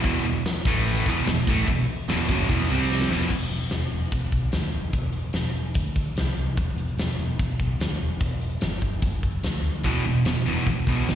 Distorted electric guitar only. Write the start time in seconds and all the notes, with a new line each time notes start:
0.06 E2 B2 E3
0.26 E2 B2
0.67 A2 E3 A3
1.08 E2 B2 E3
1.28 E2 B2
1.50 A2 E3 A3
1.68 E2 B2
2.10 E2 B2 E3
2.31 F#2 C#3 F#3
2.50 E2 B2 E3
2.70 C3 G3 C4
3.11 E2 B2 E3
9.85 E2 B2 E3
10.05 E2 B2
10.26 E2 B2
10.46 E2 B2 E3
10.68 E2 B2
10.88 E2 B2 E3
11.09 E2 B2